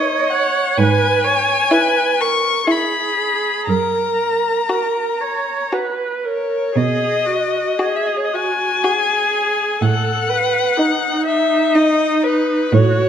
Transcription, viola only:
Already playing: C#5
0.78 B4
1.24 C#5
1.72 B4
2.20 A#4
2.69 G#4
3.69 A#4
4.70 A#4
5.21 C#5
5.73 B4
6.24 A#4
6.75 G#4
7.26 F#4
7.79 G#4
8.33 F#4
8.83 G#4
9.81 A4
10.29 B4
10.77 D#4
12.72 F#4

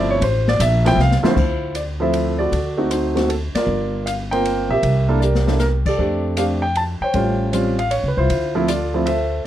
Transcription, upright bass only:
Already playing: G1
0.21 A1
0.60 A#1
0.97 C2
1.22 muted upright bass stroke
1.37 D2
2.52 D2
3.55 muted upright bass stroke
3.67 G1
4.69 A#1
4.83 C2
5.99 F2
7.01 muted upright bass stroke
7.14 A1
8.04 C#2
8.17 C2
8.30 D2

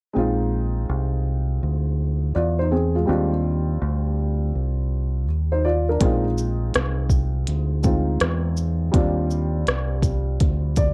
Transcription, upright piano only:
0.13 G#3 C4 D#4
0.18 F4
2.35 F4 D5
2.59 D#4 C5
2.71 C4 G#4
2.95 G#3 F4
3.06 G3 C4 D4
3.10 F4
5.52 D#4 C5
5.65 F4 D5
5.89 D4 A#4
5.99 G#3 C4 D#4
6.04 F4
7.83 G#3 C4 D#4 F4
8.92 G3 C4 D4
8.96 F4
10.78 D5

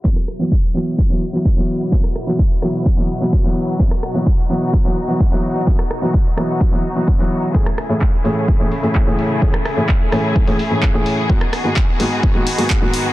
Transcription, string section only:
0.04 B2 F#3 E4 F#4
3.80 D#4
7.54 C#3 A3 E4 G#4
11.29 D#3 B3 F#4

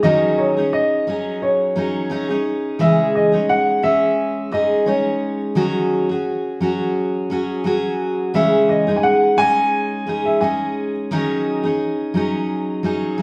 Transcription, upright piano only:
0.03 D#5
0.38 C#5
0.73 D#5
1.42 C#5
2.81 E5
3.15 D#5
3.49 F#5
3.83 E5
4.52 D#5
4.86 C#5
8.35 E5
8.69 D#5
8.96 G#5
9.03 F#5
9.38 G#5
10.25 E5
10.41 G#5

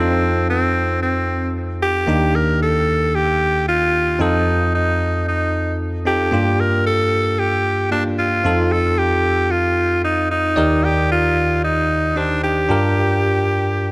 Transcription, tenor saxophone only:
Already playing: C4
0.49 C4
1.02 C4
1.82 G4
2.35 A#4
2.62 A4
3.15 G4
3.68 F4
4.21 D#4
4.74 D#4
5.28 D#4
6.07 G4
6.60 A#4
6.86 A4
7.39 G4
7.92 D4
8.18 F4
8.72 A4
8.98 G4
9.51 F4
10.04 D#4
10.31 D#4
10.84 G4
11.11 F4
11.64 D#4
12.17 D4
12.43 G4

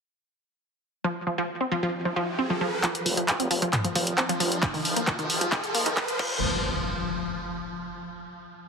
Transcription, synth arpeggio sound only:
1.04 F3
1.27 F3
1.38 F3
1.61 C4
1.72 F3
1.83 F3
2.05 F3
2.16 F3
2.39 C4
2.50 F3
2.61 F3
2.83 F3
3.06 F3
3.17 F3
3.40 C4
3.51 F3
3.62 F3
3.84 F3
3.95 F3
4.18 C4
4.29 F3
4.40 F3
4.63 F3
4.74 D#3
4.96 A#3
5.07 D#3
5.19 D#3
5.41 F3
5.52 D#3
5.74 A#3
5.86 D#3
5.97 D#3
6.19 F3

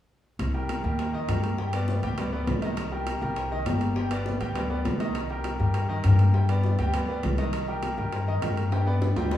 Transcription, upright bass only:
0.39 C2
0.84 D#2
1.28 G2
2.03 D2
2.47 C2
3.22 C2
3.66 G1
4.40 D2
4.85 C2
5.59 G2
6.04 G2
6.79 D2
7.24 C2
7.98 G2
8.42 G2
9.16 D2

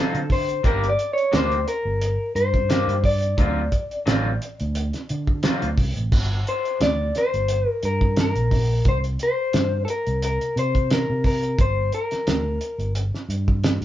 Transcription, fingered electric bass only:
0.14 D3
0.64 G1
1.33 D2
1.85 G1
2.35 G2
2.88 G2
3.38 D2
4.06 A1
4.61 D2
5.10 D3
5.63 D2
5.78 C2
5.97 A1
6.12 G1
6.80 D2
7.34 G1
7.83 G2
8.35 A#1
8.86 C2
9.54 G2
10.07 C2
10.56 C3
11.10 C3
11.59 G1
12.27 D2
12.78 G1
13.29 G2
13.81 G2

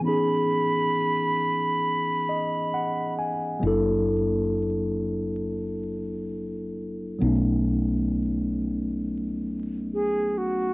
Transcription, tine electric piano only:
0.00 E3 B3 C#4
0.06 D#4 G#4
2.29 D#5
2.74 F#5
3.19 G#5
3.59 F#3 A#3 D4
3.65 E4 A4
7.19 F#3 B3 C#4
7.24 A3 D#4

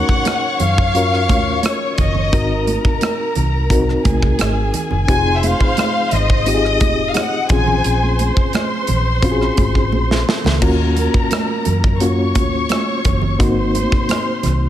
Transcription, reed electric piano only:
Already playing: C#4 D#4 F#4 A#4
0.95 C#4 F4 F#4 A#4
2.32 C4 D#4 F#4 A#4
3.70 C4 D#4 F#4 A#4
5.08 C4 D#4 F4 G4
6.46 C4 D#4 F4 G4
6.54 G#4
7.50 C4 C#4 F4 G#4
9.23 C4 C#4 F4 F#4
9.31 G#4
10.61 A#3 C#4 F4 F#4
12.00 A#3 C#4 F4 F#4
13.39 A#3 C4 D#4 F#4

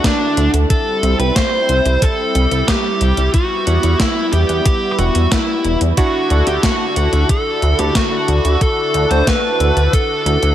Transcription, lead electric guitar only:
0.05 D4
0.70 A4
1.20 B4
1.36 C5
2.03 A4
2.68 G4
3.34 F#4
4.00 E4
4.33 G4
4.66 G4
4.92 G4
4.99 F#4
5.32 E4
5.99 F#4
6.48 G4
6.64 F#4
7.30 A4
7.80 G4
7.96 F#4
8.62 A4
9.11 C5
9.28 B4
9.94 A4

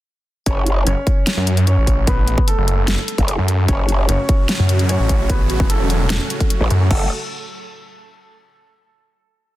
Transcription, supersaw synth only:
3.69 A2 C#3 F#3 C#4 F#4
6.91 C#3 F#3 A3 F#4 A4

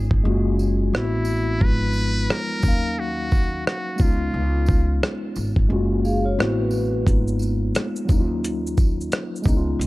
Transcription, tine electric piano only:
Already playing: G#3 B3 C#4 D#4 F4
0.24 G#3 A#3 C#4 F4
0.28 F#4
0.93 A3 B3 C4 E4 F#4
1.60 F3 G#3 B3 D#4
1.65 F4
2.60 F#3 A#3
2.64 C#4 D#4
2.68 F5
3.96 G#3 B3
4.00 C#4 D#4
4.05 F4
5.69 G#3 A3 C#4 F4
5.73 A#3 F#4
6.37 A3 B3 C4 E4
6.41 F#4
7.05 G#3 A#3 B3 D#4
7.09 F4
8.05 F#3 A#3
8.10 C#4 D#4
8.14 E4
8.20 F4
9.42 G#3 B3
9.46 C#4 D#4
9.50 E4
9.57 F4

